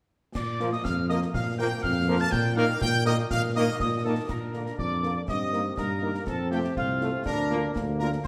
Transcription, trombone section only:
0.61 0.69 F3 medium
0.61 0.69 A#3 medium
1.10 1.18 F3 medium
1.10 1.18 A#3 medium
1.59 1.68 F3 medium
1.59 1.68 A#3 loud
2.08 2.17 F3 medium
2.08 2.17 A#3 medium
2.57 2.66 D#3 loud
2.57 2.66 A#3 loud
3.06 3.14 D#3 loud
3.06 3.14 A#3 medium
3.56 3.65 D#3 loud
3.56 3.65 A#3 loud
4.05 4.14 D#3 medium
4.05 4.14 A#3 medium
4.54 4.63 D3 medium
4.54 4.63 A#3 medium
5.03 5.12 D3 medium
5.03 5.12 A#3 medium
5.53 5.61 D#3 medium
5.53 5.61 A#3 medium
6.02 6.11 D#3 medium
6.02 6.11 A#3 medium
6.52 6.60 C3 medium
6.52 6.60 A3 medium
7.01 7.10 C3 medium
7.01 7.10 A3 medium
7.50 7.59 F3 medium
7.50 7.59 A#3 medium
8.00 8.08 F3 medium
8.00 8.09 A#3 medium

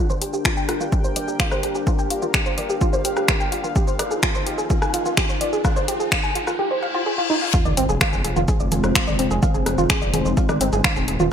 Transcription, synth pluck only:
0.10 0.14 C5 loud
0.22 0.28 G4 medium
0.33 0.43 G4 medium
0.45 0.49 F4 medium
0.57 0.67 G5 loud
0.69 0.75 F4 medium
0.81 0.84 F4 medium
0.93 0.99 G4 medium
1.04 1.11 C5 medium
1.16 1.26 D5 medium
1.28 1.38 G4 medium
1.40 1.44 F4 loud
1.52 1.55 C5 loud
1.63 1.70 G4 medium
1.75 1.85 G4 medium
1.87 1.91 F4 medium
1.99 2.08 G5 loud
2.11 2.17 F4 medium
2.22 2.26 F4 medium
2.34 2.41 G4 medium
2.46 2.52 C5 medium
2.58 2.67 D5 medium
2.70 2.79 G4 medium
2.81 2.85 F4 loud
2.93 2.97 C5 loud
3.05 3.11 G4 medium
3.17 3.26 G4 medium
3.28 3.32 F4 medium
3.40 3.50 G5 loud
3.52 3.59 F4 medium
3.64 3.68 F4 medium
3.76 3.82 G4 medium
3.87 3.94 C5 medium
3.99 4.09 D5 medium
4.11 4.21 G#4 medium
4.23 4.27 F4 loud
4.35 4.39 C5 loud
4.46 4.53 G4 medium
4.58 4.68 G#4 medium
4.70 4.74 F4 medium
4.82 4.92 G#5 loud
4.94 5.00 F4 medium
5.06 5.10 F4 medium
5.17 5.24 G4 medium
5.29 5.36 C5 medium
5.41 5.51 D5 medium
5.53 5.63 G#4 medium
5.65 5.69 F4 loud
5.76 5.80 C5 loud
5.88 5.95 G4 medium
6.00 6.10 G#4 medium
6.12 6.16 F4 medium
6.24 6.33 G#5 loud
6.35 6.42 F4 medium
6.47 6.51 F4 medium
6.59 6.66 G4 medium
6.71 6.77 C5 medium
6.83 6.87 F5 loud
6.95 7.01 F4 loud
7.06 7.16 G#4 medium
7.18 7.22 F4 medium
7.30 7.34 D#4 loud
7.42 7.46 F5 medium
7.54 7.60 F4 loud
7.65 7.72 D5 loud
7.77 7.84 C4 loud
7.89 7.96 G#4 loud
8.01 8.11 F5 medium
8.13 8.19 G#4 medium
8.25 8.28 G#4 medium
8.36 8.43 F4 loud
8.48 8.58 G#4 loud
8.60 8.70 D5 medium
8.72 8.76 G#4 medium
8.84 8.88 C5 medium
8.95 9.02 F4 loud
9.07 9.14 D5 loud
9.19 9.26 C4 loud
9.31 9.37 G#4 loud
9.43 9.52 F5 medium
9.54 9.61 G#4 medium
9.66 9.70 G#4 medium
9.78 9.85 F4 loud
9.90 10.00 G#4 loud
10.02 10.12 D5 medium
10.14 10.17 G#4 medium
10.25 10.29 C5 medium
10.37 10.44 F4 loud
10.49 10.56 D5 loud
10.61 10.67 C4 loud
10.73 10.79 G#4 loud
10.85 10.94 F5 medium
10.96 11.03 G#4 medium
11.08 11.12 G#4 medium
11.20 11.26 F4 loud

